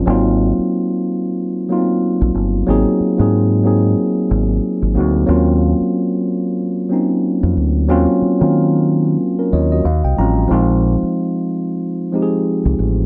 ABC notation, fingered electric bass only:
X:1
M:4/4
L:1/16
Q:"Swing 16ths" 1/4=92
K:Ebdor
V:1 name="Fingered electric bass" clef=bass
A,,,3 z8 z2 B,,, =G,,,2 | A,,, z2 A,,4- A,, z2 A,,,2 z A,,, =D,,2 | E,,3 z8 z2 F,, =D,,2 | E,, z2 E,4- E, z2 E,,2 E,, C,, =A,,,2 |
B,,,3 z8 z2 C,, =A,,,2 |]